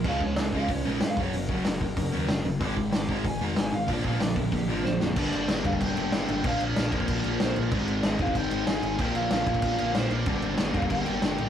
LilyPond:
<<
  \new Staff \with { instrumentName = "Lead electric guitar" } { \time 4/4 \key bes \mixolydian \tempo 4 = 188 << { r1 | r1 | r1 | r2. c''8 d''8~ |
d''8 d''4 f''8 g''4 g''8 g''8 | f''8 d''8 bes'2 c''8 d''8~ | d''8 d''8 ees''8 f''8 g''4 aes''4 | g''8 f''8 f''2 c''8 d''8~ |
d''8 d''4 f''8 g''4 g''4 | } \\ { f''8 des''8 bes'8 f''8 des''8 bes'8 f''8 des''8 | bes'8 bes'2. r8 | d'''8 r8 d'''8 bes''8 aes''8 bes''8 aes''8 f''8 | d''8 f''8 d''8 bes'8 g'8 bes'4. |
r1 | r1 | r1 | r1 |
r1 | } >> }
  \new Staff \with { instrumentName = "Distorted electric guitar" } { \clef bass \time 4/4 \key bes \mixolydian <des aes des'>2.~ <des aes des'>8 <ges, des ges>8~ | <ges, des ges>2.~ <ges, des ges>8 r8 | <aes, ees aes>1 | <bes, f bes>1 |
<g, d g>2 <g, d g>2 | <bes, f bes>2 <bes, f bes>2 | <aes, ees aes>2 <aes, ees aes>2 | <bes, f bes>2 <bes, f bes>2 |
<g, d g>2 <g, d g>2 | }
  \new Staff \with { instrumentName = "Distorted electric guitar" } { \clef bass \time 4/4 \key bes \mixolydian <des f aes>8 <des f>8 <des f>8 <des f aes>8 <des f>8 <des f aes>8 <des f>8 <ges, des ges>8 | <ges, des>8 <ges, des ges>8 <ges, des>8 <ges, des>8 <ges, des>8 <ges, des ges>8 <ges, des>8 <ges, des>8 | <aes, ees aes>8 <aes, ees>8 <aes, ees>8 <aes, ees aes>8 <aes, ees>8 <aes, ees aes>8 <aes, ees>8 <aes, ees>8 | <bes, d f>8 <bes, d f>8 <bes, d>8 <bes, d>8 <bes, d>8 <bes, d f>8 <bes, d>8 <bes, d>8 |
<g, d g bes d'>4. <g, d g bes d'>2~ <g, d g bes d'>8 | <bes, d f bes d'>4. <bes, d f bes d'>2~ <bes, d f bes d'>8 | <aes, ees aes c' ees'>4. <aes, ees aes c' ees'>2~ <aes, ees aes c' ees'>8 | <bes, d f bes d'>4. <bes, d f bes d'>2~ <bes, d f bes d'>8 |
<g, d g bes d'>4. <g, d g bes d'>2~ <g, d g bes d'>8 | }
  \new Staff \with { instrumentName = "Distorted electric guitar" } { \clef bass \time 4/4 \key bes \mixolydian <des aes des'>8 <des aes>8 <des aes>8 <des aes des'>8 <des aes>8 <des aes des'>8 <des aes>8 <ges, des ges>8 | <ges, des>8 <ges, des ges>8 <ges, des>8 <ges, des>8 <ges, des>8 <ges, des ges>8 <ges, des>8 <ges, des>8 | <aes, ees aes>8 <aes, ees>8 <aes, ees>8 <aes, ees aes>8 <aes, ees>8 <aes, ees aes>8 <aes, ees>8 <aes, ees>8 | <bes, f bes>8 <bes, f bes>8 <bes, f>8 <bes, f>8 <bes, f>8 <bes, f bes>8 <bes, f>8 <bes, f>8 |
<g, d g>2~ <g, d g>8 <g, d g>8 <g, d g>4 | <bes, f bes>2~ <bes, f bes>8 <bes, f bes>8 <bes, f bes>4 | <aes, ees aes>2~ <aes, ees aes>8 <aes, ees aes>8 <aes, ees aes>4 | <bes, f bes>2~ <bes, f bes>8 <bes, f bes>8 <bes, f bes>4 |
<g, d g>2~ <g, d g>8 <g, d g>8 <g, d g>4 | }
  \new Staff \with { instrumentName = "Picked electric bass" } { \clef bass \time 4/4 \key bes \mixolydian des,8 des,8 des,4 des,8 bes,,8 g,8 ges,,8 | ges,,8 ges,,8 ges,,4 ges,,8 ees,8 ges,,8 ges,,8 | aes,,8 aes,,8 aes,,4 aes,,8 f,,8 aes,,8 aes,,8 | bes,,8 bes,,8 bes,,4 bes,,8 aes,,8 bes,,8 f,,8 |
g,,8 g,,8 g,,8 f,,8 g,,8 g,,8 g,,8 aes,,8 | bes,,8 bes,,8 bes,,8 bes,,8 bes,,8 bes,,8 bes,,8 bes,,8 | aes,,8 aes,,8 aes,,8 f,,8 aes,,8 aes,,8 aes,,8 aes,,8 | bes,,8 bes,,8 bes,,8 bes,,8 bes,,8 bes,,8 bes,,8 bes,,8 |
g,,8 g,,8 g,,8 f,,8 g,,8 g,,8 g,,8 a,,8 | }
  \new DrumStaff \with { instrumentName = "Drums" } \drummode { \time 4/4 <cymc bd>8 bd8 <hho sn>8 bd8 <hho bd>4 <hho sn>8 bd8 | hho8 bd8 <hho sn>8 bd8 <hho bd>4 <hho sn>4 | <hho bd>8 bd8 <hho sn>8 bd8 <hho bd>4 <hho sn>4 | <hho bd>8 bd8 <hho sn>8 bd8 <hho bd>4 sn8 sn8 |
<cymc bd>8 cymc8 <cymc sn>8 <cymc bd>16 bd16 <cymc bd>8 cymc8 <cymc sn>8 cymc8 | <cymc bd>8 cymc8 <cymc sn>8 <cymc bd>16 bd16 <cymc bd>8 cymc8 <cymc sn>8 cymc8 | <cymc bd>8 cymc8 <cymc sn>8 <cymc bd>16 bd16 <cymc bd>8 cymc8 <cymc sn>8 cymc8 | <cymc bd>8 cymc8 <cymc sn>8 <cymc bd>16 bd16 <cymc bd>8 cymc8 <cymc sn>8 cymc8 |
<cymc bd>8 cymc8 <cymc sn>8 <cymc bd>16 bd16 <cymc bd>8 cymc8 <cymc sn>8 cymc8 | }
>>